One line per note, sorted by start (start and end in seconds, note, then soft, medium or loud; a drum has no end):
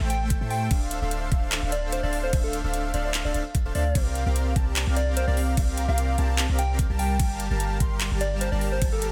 0.00 0.39 A1 loud
0.00 0.39 A3 loud
0.00 0.39 A4 medium
0.00 0.39 C5 medium
0.00 0.39 E5 medium
0.00 0.38 G5 loud
0.00 0.39 G5 loud
0.10 0.24 G5 loud
0.10 closed hi-hat medium
0.30 kick loud
0.30 closed hi-hat medium
0.41 0.69 A2 medium
0.41 0.69 A3 medium
0.41 0.69 A4 medium
0.41 0.69 C5 medium
0.41 0.69 E5 medium
0.41 0.69 G5 medium
0.50 0.75 G5 medium
0.50 open hi-hat medium
0.71 1.00 D1 medium
0.71 0.99 D4 medium
0.71 0.99 A4 medium
0.71 0.99 C5 medium
0.71 0.99 E5 medium
0.71 0.99 F5 medium
0.71 kick loud
0.71 closed hi-hat medium
0.71 crash soft
0.91 closed hi-hat medium
1.02 1.30 D1 loud
1.02 1.29 D4 medium
1.02 1.29 A4 medium
1.02 1.29 C5 medium
1.02 1.29 E5 medium
1.02 1.29 F5 medium
1.11 closed hi-hat medium
1.32 1.61 D1 loud
1.32 1.60 D4 loud
1.32 1.60 A4 medium
1.32 1.60 C5 medium
1.32 1.60 E5 medium
1.32 1.60 F5 loud
1.32 kick loud
1.32 closed hi-hat medium
1.52 clap loud
1.52 closed hi-hat medium
1.52 crash soft
1.63 2.01 D1 loud
1.63 2.01 D4 loud
1.63 2.01 A4 medium
1.63 2.01 C5 medium
1.63 2.01 E5 medium
1.63 2.01 F5 loud
1.72 1.87 D5 medium
1.72 closed hi-hat medium
1.92 2.01 C5 medium
1.92 closed hi-hat medium
2.03 2.31 D1 medium
2.03 2.31 D4 medium
2.03 2.31 A4 medium
2.03 2.31 C5 medium
2.03 2.17 D5 medium
2.03 2.31 E5 medium
2.03 2.31 F5 medium
2.13 open hi-hat medium
2.24 2.37 C5 medium
2.33 2.62 D1 loud
2.33 2.62 D4 medium
2.33 2.62 A4 medium
2.33 2.62 C5 medium
2.33 2.62 E5 medium
2.33 2.62 F5 medium
2.33 kick loud
2.33 closed hi-hat medium
2.33 crash medium
2.44 2.57 A4 loud
2.53 closed hi-hat medium
2.64 2.92 D1 loud
2.64 2.92 D4 medium
2.64 2.92 A4 medium
2.64 2.92 C5 medium
2.64 2.92 E5 medium
2.64 2.92 F5 loud
2.74 closed hi-hat medium
2.94 3.23 D1 loud
2.94 3.22 D4 loud
2.94 3.22 A4 medium
2.94 3.22 C5 medium
2.94 3.01 D5 medium
2.94 3.22 E5 medium
2.94 3.22 F5 loud
2.94 closed hi-hat medium
3.05 3.11 D5 medium
3.14 clap loud
3.14 closed hi-hat medium
3.14 crash soft
3.25 3.33 D1 loud
3.25 3.33 D4 loud
3.25 3.32 A4 medium
3.25 3.33 C5 medium
3.25 3.31 D5 medium
3.25 3.33 E5 medium
3.25 3.32 F5 loud
3.25 3.33 F5 loud
3.34 3.41 D1 medium
3.34 3.44 D4 medium
3.34 3.44 A4 medium
3.34 3.44 C5 medium
3.34 3.41 D5 medium
3.34 3.44 E5 medium
3.34 3.44 F5 medium
3.34 closed hi-hat medium
3.55 kick loud
3.55 closed hi-hat medium
3.65 3.73 D1 loud
3.65 3.73 D4 medium
3.65 3.73 A4 medium
3.65 3.73 C5 medium
3.65 3.73 E5 medium
3.65 3.73 F5 loud
3.75 3.93 D2 loud
3.75 3.84 D4 medium
3.75 3.84 A4 medium
3.75 3.84 C5 medium
3.75 4.00 D5 medium
3.75 3.84 E5 medium
3.75 3.84 F5 loud
3.75 open hi-hat medium
3.95 4.24 C2 loud
3.95 4.24 C4 medium
3.95 4.24 G4 medium
3.95 4.24 A#4 medium
3.95 4.24 D5 medium
3.95 4.24 F5 medium
3.95 kick loud
3.95 closed hi-hat medium
3.95 crash medium
4.15 closed hi-hat medium
4.26 4.54 C2 loud
4.26 4.54 C4 medium
4.26 4.54 G4 medium
4.26 4.54 A#4 medium
4.26 4.54 D5 medium
4.26 4.54 F5 medium
4.36 closed hi-hat medium
4.56 4.85 C2 loud
4.56 4.84 C4 loud
4.56 4.84 G4 medium
4.56 4.84 A#4 medium
4.56 4.84 D5 medium
4.56 4.84 A5 loud
4.56 kick loud
4.56 closed hi-hat medium
4.76 clap loud
4.76 closed hi-hat medium
4.76 crash soft
4.87 5.25 C2 medium
4.87 5.25 C4 loud
4.87 5.25 G4 medium
4.87 5.25 A#4 medium
4.87 5.25 D5 medium
4.87 5.25 F5 loud
4.96 5.11 D5 loud
4.96 closed hi-hat medium
5.17 5.25 C5 medium
5.17 closed hi-hat medium
5.27 5.55 C2 medium
5.27 5.55 C4 medium
5.27 5.55 G4 medium
5.27 5.55 A#4 medium
5.27 5.55 D5 medium
5.27 5.41 D5 medium
5.27 5.55 F5 medium
5.37 open hi-hat medium
5.57 5.86 C2 loud
5.57 5.86 C4 medium
5.57 5.86 G4 medium
5.57 5.86 A#4 medium
5.57 5.86 D5 medium
5.57 5.86 F5 medium
5.57 kick loud
5.57 closed hi-hat medium
5.57 crash medium
5.78 closed hi-hat medium
5.88 6.16 C2 loud
5.88 6.16 C4 medium
5.88 6.16 G4 medium
5.88 6.16 A#4 medium
5.88 6.16 D5 medium
5.88 6.16 F5 medium
5.88 6.16 F5 loud
5.88 6.45 F5 medium
5.98 closed hi-hat medium
6.18 6.47 C2 loud
6.18 6.47 C4 loud
6.18 6.47 G4 medium
6.18 6.47 A#4 medium
6.18 6.47 D5 loud
6.18 6.47 A5 loud
6.18 closed hi-hat medium
6.38 clap loud
6.38 closed hi-hat medium
6.38 crash soft
6.49 6.88 C2 loud
6.49 6.87 C4 loud
6.49 6.87 G4 medium
6.49 6.87 A#4 medium
6.49 6.87 D5 medium
6.49 6.87 F5 loud
6.59 6.73 G5 medium
6.59 closed hi-hat medium
6.79 kick loud
6.79 closed hi-hat medium
6.90 7.21 C2 loud
6.90 7.17 G3 medium
6.90 7.17 G4 medium
6.90 7.17 A#4 medium
6.90 7.17 F5 medium
6.90 7.17 A5 medium
6.99 7.40 G5 loud
6.99 open hi-hat medium
7.19 7.48 G1 loud
7.19 7.48 G3 medium
7.19 7.48 G4 medium
7.19 7.48 A#4 medium
7.19 7.48 F5 medium
7.19 7.48 A5 medium
7.19 kick loud
7.19 closed hi-hat medium
7.19 crash medium
7.40 closed hi-hat medium
7.50 7.78 G1 loud
7.50 7.78 G3 medium
7.50 7.78 G4 medium
7.50 7.78 A#4 medium
7.50 7.78 F5 medium
7.50 7.78 A5 medium
7.50 7.78 A5 loud
7.60 closed hi-hat medium
7.80 8.09 G1 loud
7.80 8.09 G3 loud
7.80 8.09 G4 medium
7.80 8.09 A#4 medium
7.80 8.09 F5 medium
7.80 8.09 C6 loud
7.80 kick loud
7.80 closed hi-hat medium
8.01 clap loud
8.01 closed hi-hat medium
8.01 crash soft
8.11 8.50 G1 medium
8.11 8.49 G3 loud
8.11 8.49 G4 medium
8.11 8.49 A#4 medium
8.11 8.49 F5 medium
8.11 8.49 A5 loud
8.21 8.35 D5 medium
8.21 closed hi-hat medium
8.41 8.50 C5 medium
8.41 closed hi-hat medium
8.52 8.80 G1 medium
8.52 8.79 G3 medium
8.52 8.79 G4 medium
8.52 8.79 A#4 medium
8.52 8.65 D5 medium
8.52 8.79 F5 medium
8.52 8.79 A5 medium
8.61 open hi-hat medium
8.72 8.86 C5 medium
8.82 9.11 G1 loud
8.82 9.10 G3 medium
8.82 9.10 G4 medium
8.82 9.10 A#4 medium
8.82 9.10 F5 medium
8.82 9.10 A5 medium
8.82 kick loud
8.82 closed hi-hat medium
8.82 crash soft
8.92 9.06 A4 loud
9.02 closed hi-hat medium